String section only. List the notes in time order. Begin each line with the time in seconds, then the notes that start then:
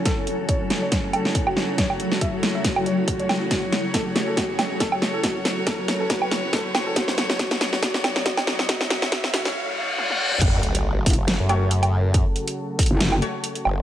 Already playing: C#3 F#3 A3 F#4 A4
3.51 C#5
10.41 C#3 F#3 A3 F#4 A4